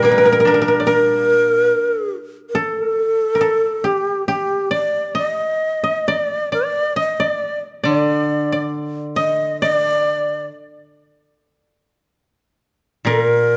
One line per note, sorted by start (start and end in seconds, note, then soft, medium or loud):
0.00 1.70 A#2 soft
0.00 1.29 G3 soft
0.00 1.71 A#3 soft
0.00 0.10 A#4 medium
0.05 0.11 A#4 soft
0.10 0.17 A#4 soft
0.10 0.26 B4 medium
0.18 0.25 A#4 soft
0.25 0.32 A#4 soft
0.25 0.83 A#4 medium
0.32 0.40 A#4 soft
0.40 0.47 A#4 soft
0.45 2.14 D4 soft
0.45 0.54 A#4 soft
0.54 0.61 A#4 soft
0.62 0.68 A#4 soft
0.68 0.86 A#4 soft
0.80 2.40 D5 soft
0.85 2.09 A#4 medium
0.85 2.61 A#4 medium
2.49 2.60 A#4 soft
2.55 3.40 A4 medium
2.55 3.87 A4 medium
3.35 3.47 A#4 soft
3.41 5.31 A4 medium
3.84 4.28 G4 soft
3.84 4.27 G4 medium
4.28 4.69 G4 medium
4.28 6.32 G4 medium
4.71 5.21 D5 medium
4.71 5.14 D5 medium
5.15 5.83 D#5 medium
5.15 6.08 D#5 medium
5.84 6.14 D#5 soft
6.08 6.52 D5 medium
6.08 6.19 D#5 medium
6.19 6.52 D5 medium
6.52 7.02 D5 medium
6.52 6.94 D5 medium
6.96 7.26 D#5 medium
6.96 7.22 D#5 medium
7.20 7.83 D5 medium
7.20 7.59 D5 medium
7.84 10.48 D3 soft
7.84 8.52 D5 medium
7.84 8.70 D5 medium
8.52 9.22 D5 soft
9.16 9.68 D#5 medium
9.16 9.58 D#5 medium
9.61 10.45 D5 medium
9.61 11.22 D5 medium
13.05 13.57 A#2 soft
13.05 13.57 A#4 medium
13.09 13.22 A4 medium
13.22 13.57 A#4 medium